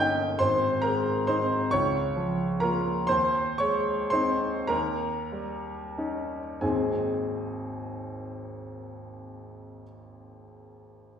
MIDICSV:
0, 0, Header, 1, 2, 480
1, 0, Start_track
1, 0, Key_signature, -4, "major"
1, 0, Tempo, 867052
1, 222, Time_signature, 6, 3, 24, 8
1, 1190, Tempo, 937500
1, 1670, Tempo, 1045296
1, 2150, Tempo, 1171875
1, 2630, Tempo, 1310044
1, 3110, Tempo, 1185771
1, 4070, Tempo, 1151631
1, 4992, End_track
2, 0, Start_track
2, 0, Title_t, "Grand piano"
2, 0, Program_c, 0, 0
2, 0, Control_c, 0, 64, 127
2, 0, Note_on_c, 0, 31, 43
2, 0, Note_on_c, 0, 58, 40
2, 0, Note_on_c, 0, 61, 37
2, 0, Note_on_c, 0, 63, 40
2, 0, Note_on_c, 0, 75, 58
2, 0, Note_on_c, 0, 79, 61
2, 0, Note_on_c, 0, 87, 75
2, 0, Note_on_c, 0, 91, 76
2, 130, Note_off_c, 0, 58, 0
2, 203, Note_off_c, 0, 61, 0
2, 204, Note_off_c, 0, 31, 0
2, 204, Note_off_c, 0, 63, 0
2, 209, Note_off_c, 0, 79, 0
2, 215, Note_on_c, 0, 84, 84
2, 220, Note_off_c, 0, 91, 0
2, 221, Note_on_c, 0, 72, 60
2, 225, Note_on_c, 0, 32, 52
2, 232, Control_c, 0, 64, 0
2, 236, Note_off_c, 0, 75, 0
2, 236, Note_off_c, 0, 87, 0
2, 313, Control_c, 0, 64, 127
2, 443, Note_off_c, 0, 72, 0
2, 452, Note_on_c, 0, 82, 78
2, 456, Note_off_c, 0, 84, 0
2, 460, Note_on_c, 0, 70, 58
2, 467, Note_on_c, 0, 56, 39
2, 683, Note_off_c, 0, 70, 0
2, 696, Note_off_c, 0, 82, 0
2, 704, Note_on_c, 0, 84, 76
2, 707, Note_on_c, 0, 72, 60
2, 712, Note_on_c, 0, 60, 37
2, 713, Note_on_c, 0, 63, 40
2, 849, Note_off_c, 0, 56, 0
2, 922, Note_off_c, 0, 32, 0
2, 927, Note_off_c, 0, 60, 0
2, 927, Note_off_c, 0, 63, 0
2, 930, Note_off_c, 0, 72, 0
2, 945, Note_off_c, 0, 84, 0
2, 947, Note_on_c, 0, 85, 85
2, 952, Note_on_c, 0, 73, 62
2, 954, Control_c, 0, 64, 0
2, 956, Note_on_c, 0, 37, 50
2, 1064, Control_c, 0, 64, 127
2, 1196, Note_on_c, 0, 53, 38
2, 1408, Note_off_c, 0, 73, 0
2, 1422, Note_on_c, 0, 82, 74
2, 1425, Note_on_c, 0, 70, 62
2, 1426, Note_off_c, 0, 85, 0
2, 1432, Note_on_c, 0, 58, 36
2, 1436, Note_on_c, 0, 65, 44
2, 1573, Note_off_c, 0, 53, 0
2, 1653, Note_off_c, 0, 70, 0
2, 1654, Note_off_c, 0, 58, 0
2, 1656, Note_off_c, 0, 37, 0
2, 1656, Note_off_c, 0, 65, 0
2, 1661, Note_on_c, 0, 84, 87
2, 1669, Note_off_c, 0, 82, 0
2, 1669, Note_on_c, 0, 72, 65
2, 1672, Note_on_c, 0, 39, 52
2, 1678, Control_c, 0, 64, 0
2, 1767, Control_c, 0, 64, 127
2, 1888, Note_off_c, 0, 72, 0
2, 1897, Note_on_c, 0, 85, 76
2, 1900, Note_off_c, 0, 84, 0
2, 1905, Note_on_c, 0, 73, 61
2, 1906, Note_on_c, 0, 56, 39
2, 2133, Note_off_c, 0, 73, 0
2, 2136, Note_on_c, 0, 84, 82
2, 2143, Note_on_c, 0, 72, 56
2, 2146, Note_off_c, 0, 85, 0
2, 2147, Note_on_c, 0, 60, 37
2, 2150, Note_on_c, 0, 63, 39
2, 2287, Note_off_c, 0, 56, 0
2, 2361, Note_off_c, 0, 72, 0
2, 2363, Note_off_c, 0, 60, 0
2, 2364, Note_off_c, 0, 63, 0
2, 2365, Note_off_c, 0, 39, 0
2, 2372, Note_on_c, 0, 82, 79
2, 2374, Note_off_c, 0, 84, 0
2, 2376, Note_on_c, 0, 70, 62
2, 2381, Note_on_c, 0, 39, 52
2, 2392, Control_c, 0, 64, 0
2, 2476, Control_c, 0, 64, 127
2, 2637, Note_on_c, 0, 55, 35
2, 2878, Note_on_c, 0, 61, 32
2, 2878, Note_on_c, 0, 63, 39
2, 3023, Note_off_c, 0, 55, 0
2, 3093, Note_off_c, 0, 70, 0
2, 3095, Note_off_c, 0, 39, 0
2, 3097, Note_off_c, 0, 61, 0
2, 3097, Note_off_c, 0, 63, 0
2, 3106, Note_off_c, 0, 82, 0
2, 3109, Note_on_c, 0, 39, 34
2, 3109, Note_on_c, 0, 80, 46
2, 3110, Note_on_c, 0, 32, 40
2, 3112, Note_on_c, 0, 56, 34
2, 3112, Note_on_c, 0, 60, 35
2, 3113, Note_on_c, 0, 68, 31
2, 3115, Note_on_c, 0, 63, 32
2, 3119, Control_c, 0, 64, 0
2, 3226, Control_c, 0, 64, 127
2, 4416, Note_off_c, 0, 39, 0
2, 4416, Note_off_c, 0, 80, 0
2, 4417, Note_off_c, 0, 32, 0
2, 4419, Note_off_c, 0, 56, 0
2, 4419, Note_off_c, 0, 60, 0
2, 4420, Note_off_c, 0, 68, 0
2, 4422, Note_off_c, 0, 63, 0
2, 4992, End_track
0, 0, End_of_file